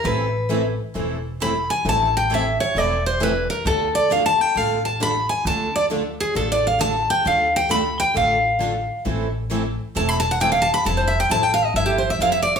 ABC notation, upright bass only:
X:1
M:4/4
L:1/8
Q:"Swing" 1/4=133
K:Am
V:1 name="Upright bass" clef=bass
A,,,4 E,,,4 | A,,,4 E,,,4 | D,,4 A,,,4 | D,,4 A,,,4 |
D,,4 A,,,4 | A,,,4 E,,,4 | F,,,2 A,,,2 G,,,2 F,,,2 |]